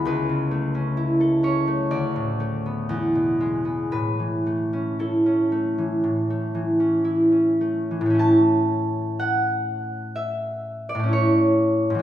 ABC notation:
X:1
M:4/4
L:1/16
Q:1/4=61
K:A
V:1 name="Harp"
B6 c2 d8 | B4 A12 | a4 f4 e3 d c4 |]
V:2 name="Harp"
[C,,E] C, A, C E A C A, D,, A,, A, B, E,, B,, G, B, | A,, E, A, C E C A, E, A,, A, E, C E C A, E, | [A,,A,CE]12 [A,,A,CE]4 |]